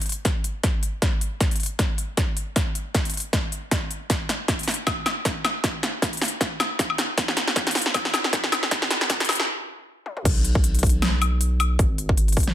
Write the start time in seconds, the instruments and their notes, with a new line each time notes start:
0.02 closed hi-hat
0.06 closed hi-hat
0.09 closed hi-hat
0.12 closed hi-hat
0.25 kick, snare, closed hi-hat
0.44 closed hi-hat
0.63 kick, snare, closed hi-hat
0.83 closed hi-hat
1.02 kick, snare, closed hi-hat
1.21 closed hi-hat
1.41 kick, snare, closed hi-hat
1.51 closed hi-hat
1.56 closed hi-hat
1.60 closed hi-hat
1.63 closed hi-hat
1.66 closed hi-hat
1.79 kick, snare, closed hi-hat
1.98 closed hi-hat
2.17 kick, snare, closed hi-hat
2.37 closed hi-hat
2.56 kick, snare, closed hi-hat
2.75 closed hi-hat
2.95 kick, snare, closed hi-hat
3.05 closed hi-hat
3.10 closed hi-hat
3.14 closed hi-hat
3.17 closed hi-hat
3.20 closed hi-hat
3.33 kick, snare, closed hi-hat
3.52 closed hi-hat
3.71 kick, snare, closed hi-hat
3.91 closed hi-hat
4.10 kick, snare, closed hi-hat
4.29 snare, closed hi-hat
4.48 kick, snare, closed hi-hat
4.59 closed hi-hat
4.63 closed hi-hat
4.68 snare, closed hi-hat, open hi-hat
4.74 closed hi-hat
4.87 kick, snare, closed hi-hat, high woodblock
5.06 snare, closed hi-hat, high woodblock
5.25 kick, snare, closed hi-hat
5.45 snare, closed hi-hat, high woodblock
5.64 kick, snare, closed hi-hat
5.83 snare, closed hi-hat
6.02 kick, snare, closed hi-hat
6.13 closed hi-hat
6.17 closed hi-hat
6.22 snare, closed hi-hat, open hi-hat
6.28 closed hi-hat
6.41 kick, snare, closed hi-hat
6.60 snare, closed hi-hat, high woodblock
6.79 kick, snare, closed hi-hat
6.90 high woodblock
6.98 snare, closed hi-hat
7.18 kick, snare, closed hi-hat
7.28 snare
7.37 snare, closed hi-hat
7.48 snare
7.56 kick, snare, closed hi-hat
7.67 snare, closed hi-hat
7.71 closed hi-hat
7.75 snare, closed hi-hat, open hi-hat
7.81 closed hi-hat
7.86 snare
7.94 kick, snare, closed hi-hat, high woodblock
8.05 snare
8.14 snare, closed hi-hat, high woodblock
8.24 snare
8.33 kick, snare, closed hi-hat
8.44 snare
8.52 snare, closed hi-hat, high woodblock
8.63 snare
8.71 kick, snare, closed hi-hat
8.82 snare
8.90 snare, closed hi-hat
9.01 snare
9.10 kick, snare, closed hi-hat
9.20 snare, closed hi-hat
9.25 closed hi-hat
9.29 snare, closed hi-hat, open hi-hat, high woodblock
9.35 closed hi-hat
9.40 snare
10.06 high tom
10.17 mid tom
10.25 808-style bass B1, kick, closed hi-hat, crash
10.44 closed hi-hat
10.55 kick
10.64 closed hi-hat
10.75 closed hi-hat
10.79 closed hi-hat
10.83 kick, closed hi-hat, open hi-hat
10.89 closed hi-hat
11.02 snare, closed hi-hat, high woodblock
11.22 closed hi-hat, high woodblock
11.41 closed hi-hat
11.60 closed hi-hat, high woodblock
11.79 808-style bass G#1, kick, closed hi-hat
11.98 closed hi-hat
12.09 kick
12.17 closed hi-hat
12.28 closed hi-hat
12.32 closed hi-hat
12.37 kick, closed hi-hat, open hi-hat
12.43 closed hi-hat
12.47 snare